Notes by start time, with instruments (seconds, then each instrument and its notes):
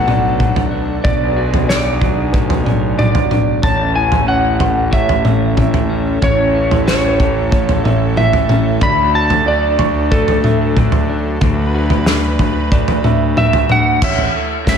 Already playing: fingered electric bass B1, clean electric guitar F#3 A3 F#4, analog synth pad F#3 B3 D4 A4, electric slide guitar F#5
0.07 clean electric guitar D4, felt piano D5, mid tom
0.39 clean electric guitar F#3, kick, mid tom
0.56 floor tom
0.71 clean electric guitar D4
1.04 fingered electric bass B1, clean electric guitar B2, analog synth pad G#4, electric slide guitar D5, kick, floor tom
1.37 clean electric guitar F#4
1.54 floor tom
1.69 clean electric guitar D4, electric slide guitar D5, snare
2.01 clean electric guitar F#3, kick, floor tom
2.32 clean electric guitar A3, felt piano B4, kick
2.50 electric slide guitar C#5, floor tom
2.65 clean electric guitar D4, felt piano D5, mid tom
2.98 clean electric guitar F#3, electric slide guitar D5, mid tom
3.15 floor tom
3.31 clean electric guitar D4, mid tom
3.62 fingered electric bass A1, clean electric guitar A2, analog synth pad E3 A3 C#4 A4, felt piano C#5, electric slide guitar A5, kick, floor tom
3.95 clean electric guitar E4, electric slide guitar G#5
4.12 floor tom
4.27 clean electric guitar C#4, felt piano C#5, electric slide guitar F#5
4.60 felt piano B4, floor tom
4.91 clean electric guitar A3, felt piano C#5, electric slide guitar E5, kick
5.09 floor tom
5.25 clean electric guitar C#4, felt piano E5, mid tom
5.57 clean electric guitar E3, kick, mid tom
5.74 floor tom
5.90 clean electric guitar C#4
6.22 fingered electric bass A1, clean electric guitar A2, electric slide guitar C#5, kick, floor tom
6.55 clean electric guitar E4
6.71 floor tom
6.87 clean electric guitar C#4, electric slide guitar C#5, snare
7.19 clean electric guitar E3, kick, floor tom
7.50 clean electric guitar A3, felt piano C#5, kick
7.69 floor tom
7.84 clean electric guitar C#4, felt piano E5, mid tom
8.17 clean electric guitar E3, electric slide guitar E5, mid tom
8.33 floor tom
8.49 clean electric guitar C#4, mid tom
8.81 fingered electric bass D2, clean electric guitar D3, analog synth pad F#3 D4, felt piano D5, electric slide guitar B5, kick, floor tom
9.15 clean electric guitar F#4, electric slide guitar A5
9.30 floor tom
9.46 clean electric guitar D4, felt piano D5, electric slide guitar D5
9.79 clean electric guitar D3, felt piano C#6, floor tom
10.11 clean electric guitar A3, electric slide guitar A4, felt piano D5, kick
10.28 floor tom
10.44 clean electric guitar D4, felt piano E5, mid tom
10.77 kick, mid tom
10.92 floor tom
11.10 clean electric guitar D4
11.41 fingered electric bass D2, clean electric guitar D3, analog synth pad B4, kick, floor tom
11.75 clean electric guitar F#4
11.90 floor tom
12.06 clean electric guitar D4, snare
12.39 clean electric guitar D3, kick, floor tom
12.72 clean electric guitar A3, felt piano D5, kick
12.88 floor tom
13.04 clean electric guitar D4, felt piano E5, mid tom
13.37 clean electric guitar D3, electric slide guitar E5, mid tom
13.53 floor tom
13.69 clean electric guitar D4, electric slide guitar F#5, mid tom
14.01 fingered electric bass A1, clean electric guitar A2, felt piano C#5, electric slide guitar E5, kick, floor tom, crash
14.18 floor tom
14.35 clean electric guitar A3
14.67 fingered electric bass A2, clean electric guitar C#4, electric slide guitar E5, kick, snare, floor tom